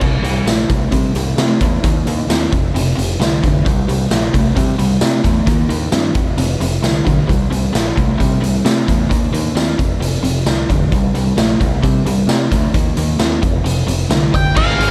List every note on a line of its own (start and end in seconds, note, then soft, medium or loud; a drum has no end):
0.01 0.19 C2 medium
0.01 0.22 C3 medium
0.01 0.22 G3 medium
0.01 kick medium
0.01 crash medium
0.22 0.41 C2 medium
0.22 0.44 C3 medium
0.22 0.45 G3 medium
0.22 closed hi-hat soft
0.46 0.64 A#1 medium
0.46 0.67 C3 medium
0.46 0.67 A3 medium
0.46 snare medium
0.46 closed hi-hat medium
0.46 tambourine medium
0.69 0.88 C2 medium
0.69 0.90 C3 medium
0.69 0.90 A3 medium
0.69 kick medium
0.69 closed hi-hat medium
0.91 1.12 C3 medium
0.91 1.10 C3 medium
0.91 1.13 G3 medium
0.91 kick medium
0.91 closed hi-hat medium
1.15 1.33 C2 medium
1.15 1.36 C3 medium
1.15 1.36 G3 medium
1.15 closed hi-hat medium
1.37 1.55 C3 medium
1.37 1.59 C3 medium
1.37 1.59 A3 medium
1.37 snare loud
1.37 closed hi-hat medium
1.37 tambourine medium
1.60 1.78 E2 medium
1.60 1.82 C3 medium
1.60 1.82 A3 medium
1.60 kick medium
1.60 closed hi-hat medium
1.83 2.01 D#2 medium
1.83 2.04 D#3 medium
1.83 2.04 A#3 medium
1.83 kick medium
1.83 closed hi-hat medium
2.06 2.24 D#2 medium
2.06 2.27 D#3 medium
2.06 2.27 A#3 medium
2.06 closed hi-hat medium
2.28 2.46 D#2 medium
2.28 2.50 D#3 medium
2.28 2.50 C4 medium
2.28 snare medium
2.28 closed hi-hat medium
2.28 tambourine loud
2.52 2.70 F1 medium
2.52 2.72 F2 medium
2.52 2.72 C3 medium
2.52 kick medium
2.52 closed hi-hat soft
2.74 2.92 F1 medium
2.74 2.94 F2 medium
2.74 2.95 C3 medium
2.74 closed hi-hat medium
2.96 3.15 F1 medium
2.96 3.17 F2 medium
2.96 3.17 C3 medium
2.96 closed hi-hat soft
3.20 3.38 C2 medium
3.20 3.40 F2 medium
3.20 3.40 D3 medium
3.20 snare medium
3.20 closed hi-hat medium
3.20 tambourine medium
3.43 3.61 F1 medium
3.43 3.63 F2 medium
3.43 3.63 D3 medium
3.43 kick medium
3.43 closed hi-hat soft
3.65 3.84 C2 medium
3.65 3.86 C3 medium
3.65 3.86 G3 medium
3.65 kick medium
3.65 closed hi-hat medium
3.88 4.06 C2 medium
3.88 4.09 C3 medium
3.88 4.09 G3 medium
3.88 closed hi-hat medium
4.11 4.28 A#1 medium
4.11 4.31 C3 medium
4.11 4.31 A3 medium
4.11 snare medium
4.11 closed hi-hat medium
4.11 tambourine loud
4.33 4.52 C2 medium
4.33 4.54 C3 medium
4.33 4.54 A3 medium
4.33 kick medium
4.33 closed hi-hat medium
4.55 4.76 C3 medium
4.55 4.74 C3 medium
4.55 4.77 G3 medium
4.55 kick medium
4.55 closed hi-hat medium
4.79 4.97 C2 medium
4.79 4.99 C3 medium
4.79 5.00 G3 medium
4.79 closed hi-hat medium
5.01 5.22 C3 medium
5.01 5.20 C3 medium
5.01 5.23 A3 medium
5.01 snare loud
5.01 closed hi-hat medium
5.01 tambourine loud
5.24 5.42 E2 medium
5.24 5.45 C3 medium
5.24 5.45 A3 medium
5.24 kick medium
5.24 closed hi-hat medium
5.47 5.65 D#2 medium
5.47 5.67 D#3 medium
5.47 5.68 A#3 medium
5.47 kick medium
5.47 closed hi-hat medium
5.69 5.88 D#2 medium
5.69 5.90 D#3 medium
5.69 5.90 A#3 medium
5.69 closed hi-hat medium
5.92 6.11 G2 medium
5.92 6.13 D#3 medium
5.92 6.13 C4 medium
5.92 snare medium
5.92 closed hi-hat medium
5.92 tambourine loud
6.15 6.33 F1 medium
6.15 6.36 F2 medium
6.15 6.36 C3 medium
6.15 kick medium
6.15 closed hi-hat medium
6.37 6.56 F1 medium
6.37 6.58 F2 medium
6.37 6.58 C3 medium
6.37 closed hi-hat medium
6.60 6.78 F1 medium
6.60 6.81 F2 medium
6.60 6.81 C3 medium
6.60 closed hi-hat soft
6.82 7.01 C2 medium
6.82 7.04 F2 medium
6.82 7.04 D3 medium
6.82 snare medium
6.82 closed hi-hat medium
6.82 tambourine loud
7.05 7.24 B1 medium
7.05 7.26 F2 medium
7.05 7.26 D3 medium
7.05 kick medium
7.05 closed hi-hat soft
7.27 7.47 C2 medium
7.27 7.49 C3 medium
7.27 7.49 G3 medium
7.27 kick medium
7.27 closed hi-hat medium
7.50 7.69 C2 medium
7.50 7.71 C3 medium
7.50 7.72 G3 medium
7.50 closed hi-hat medium
7.73 7.92 A#1 medium
7.73 7.94 C3 medium
7.73 7.94 A3 medium
7.73 snare loud
7.73 closed hi-hat medium
7.73 tambourine medium
7.96 8.15 C2 medium
7.96 8.17 C3 medium
7.96 8.17 A3 medium
7.96 kick medium
7.96 closed hi-hat soft
8.18 8.39 C3 medium
8.18 8.38 C3 medium
8.18 8.40 G3 medium
8.18 kick medium
8.18 closed hi-hat medium
8.41 8.60 C2 medium
8.41 8.62 C3 medium
8.41 8.63 G3 medium
8.41 closed hi-hat soft
8.65 8.83 C3 medium
8.65 8.86 C3 medium
8.65 8.86 A3 medium
8.65 snare loud
8.65 closed hi-hat medium
8.65 tambourine medium
8.87 9.06 E2 medium
8.87 9.08 C3 medium
8.87 9.09 A3 medium
8.87 kick medium
8.87 closed hi-hat medium
9.09 9.28 D#2 medium
9.09 9.31 D#3 medium
9.09 9.31 A#3 medium
9.09 kick medium
9.09 closed hi-hat medium
9.32 9.51 D#2 medium
9.32 9.54 D#3 medium
9.32 9.54 A#3 medium
9.32 closed hi-hat medium
9.55 9.74 D#2 medium
9.55 9.76 D#3 medium
9.55 9.76 C4 medium
9.55 snare medium
9.55 closed hi-hat medium
9.55 tambourine loud
9.78 9.97 F1 medium
9.78 9.99 F2 medium
9.78 9.99 C3 medium
9.78 kick medium
9.78 closed hi-hat medium
10.00 10.18 F1 medium
10.00 10.22 F2 medium
10.00 10.22 C3 medium
10.00 closed hi-hat medium
10.23 10.42 F1 medium
10.23 10.44 F2 medium
10.23 10.45 C3 medium
10.23 closed hi-hat medium
10.45 10.64 C2 medium
10.45 10.67 F2 medium
10.45 10.68 D3 medium
10.45 snare medium
10.45 closed hi-hat medium
10.45 tambourine medium
10.69 10.87 F1 medium
10.69 10.90 F2 medium
10.69 10.91 D3 medium
10.69 kick medium
10.69 closed hi-hat medium
10.92 11.10 C2 medium
10.92 11.13 C3 medium
10.92 11.13 G3 medium
10.92 kick medium
10.92 closed hi-hat medium
11.14 11.32 C2 medium
11.14 11.36 C3 medium
11.14 11.36 G3 medium
11.14 closed hi-hat soft
11.37 11.55 A#1 medium
11.37 11.58 C3 medium
11.37 11.59 A3 medium
11.37 snare loud
11.37 closed hi-hat medium
11.37 tambourine medium
11.60 11.79 C2 medium
11.60 11.81 C3 medium
11.60 11.81 A3 medium
11.60 kick medium
11.60 closed hi-hat soft
11.82 12.04 C3 medium
11.82 12.01 C3 medium
11.82 12.04 G3 medium
11.82 kick medium
11.82 closed hi-hat medium
12.04 12.23 C2 medium
12.04 12.27 C3 medium
12.04 12.27 G3 medium
12.04 closed hi-hat medium
12.27 12.46 C3 medium
12.27 12.50 C3 medium
12.27 12.50 A3 medium
12.27 snare loud
12.27 closed hi-hat medium
12.27 tambourine loud
12.51 12.70 D2 medium
12.51 12.72 C3 medium
12.51 12.72 A3 medium
12.51 kick medium
12.51 closed hi-hat medium
12.74 12.92 D#2 medium
12.74 12.95 D#3 medium
12.74 12.95 A#3 medium
12.74 kick medium
12.74 closed hi-hat medium
12.97 13.15 D#2 medium
12.97 13.18 D#3 medium
12.97 13.18 A#3 medium
12.97 closed hi-hat medium
13.19 13.38 D#2 medium
13.19 13.40 D#3 medium
13.19 13.41 C4 medium
13.19 snare loud
13.19 closed hi-hat medium
13.19 tambourine medium
13.42 13.61 F1 medium
13.42 13.63 F2 medium
13.42 13.63 C3 medium
13.42 kick medium
13.42 closed hi-hat medium
13.64 13.83 F1 medium
13.64 13.86 F2 medium
13.64 13.86 C3 medium
13.64 closed hi-hat medium
13.87 14.05 F1 medium
13.87 14.08 F2 medium
13.87 14.09 C3 medium
13.87 closed hi-hat medium
14.09 14.28 C2 medium
14.09 14.31 F2 medium
14.09 14.32 D3 medium
14.09 snare loud
14.09 closed hi-hat medium
14.09 tambourine medium
14.33 14.52 F1 medium
14.33 14.54 F2 medium
14.33 14.54 D3 medium
14.33 14.57 G5 medium
14.33 kick medium
14.33 closed hi-hat medium
14.55 14.76 G#1 medium
14.55 14.91 G#2 medium
14.55 14.91 D#3 medium
14.55 14.91 G#3 loud
14.55 14.91 C4 medium
14.55 14.91 D#4 medium
14.55 14.91 G#4 medium
14.55 14.91 F5 loud
14.55 kick loud
14.55 crash loud
14.69 snare soft
14.78 14.91 G#1 medium
14.78 closed hi-hat medium